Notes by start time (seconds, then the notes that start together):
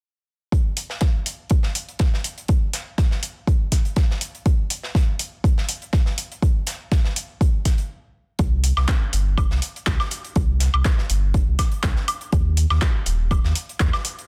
0.52 kick, closed hi-hat
0.77 closed hi-hat, open hi-hat
0.90 snare
1.01 kick, snare, closed hi-hat
1.26 closed hi-hat, open hi-hat
1.50 kick, closed hi-hat
1.63 snare
1.75 closed hi-hat, open hi-hat
1.89 closed hi-hat
1.99 kick, snare, closed hi-hat
2.14 snare
2.24 closed hi-hat, open hi-hat
2.38 closed hi-hat
2.48 kick, closed hi-hat
2.73 snare, closed hi-hat, open hi-hat
2.98 kick, snare, closed hi-hat
3.11 snare
3.23 closed hi-hat, open hi-hat
3.47 kick, closed hi-hat
3.72 kick, snare, closed hi-hat, open hi-hat
3.85 closed hi-hat
3.96 kick, snare, closed hi-hat
4.11 snare
4.21 closed hi-hat, open hi-hat
4.35 closed hi-hat
4.46 kick, closed hi-hat
4.70 closed hi-hat, open hi-hat
4.83 snare
4.95 kick, snare, closed hi-hat
5.19 closed hi-hat, open hi-hat
5.44 kick, closed hi-hat
5.58 snare
5.69 closed hi-hat, open hi-hat
5.82 closed hi-hat
5.93 kick, snare, closed hi-hat
6.06 snare
6.18 closed hi-hat, open hi-hat
6.32 closed hi-hat
6.42 kick, closed hi-hat
6.67 snare, closed hi-hat, open hi-hat
6.92 kick, snare, closed hi-hat
7.04 snare
7.16 closed hi-hat, open hi-hat
7.41 kick, closed hi-hat
7.65 kick, snare, closed hi-hat, open hi-hat
7.78 closed hi-hat
8.39 C2, kick, closed hi-hat
8.64 closed hi-hat, open hi-hat
8.77 C2, snare, high woodblock
8.88 kick, snare, clap, closed hi-hat
9.13 G1, closed hi-hat, open hi-hat
9.38 kick, closed hi-hat, high woodblock
9.51 C2, snare
9.62 closed hi-hat, open hi-hat
9.76 closed hi-hat
9.86 C2, kick, snare, clap, closed hi-hat
10.00 snare, high woodblock
10.11 closed hi-hat, open hi-hat
10.25 closed hi-hat
10.36 C2, kick, closed hi-hat
10.60 snare, closed hi-hat, open hi-hat
10.74 C2, high woodblock
10.85 kick, snare, clap, closed hi-hat
10.98 snare
11.10 G1, closed hi-hat, open hi-hat
11.34 kick, closed hi-hat
11.48 C2
11.59 kick, snare, closed hi-hat, open hi-hat, high woodblock
11.71 closed hi-hat
11.83 C2, kick, snare, clap, closed hi-hat
11.96 snare
12.08 closed hi-hat, open hi-hat, high woodblock
12.21 closed hi-hat
12.32 D#2, kick, closed hi-hat
12.57 closed hi-hat, open hi-hat
12.70 D#2, snare, high woodblock
12.82 kick, snare, clap, closed hi-hat
13.06 D#1, closed hi-hat, open hi-hat
13.31 kick, closed hi-hat, high woodblock
13.44 D#2, snare
13.55 closed hi-hat, open hi-hat
13.69 closed hi-hat
13.80 D#2, kick, snare, clap, closed hi-hat
13.93 snare, high woodblock
14.05 closed hi-hat, open hi-hat
14.19 closed hi-hat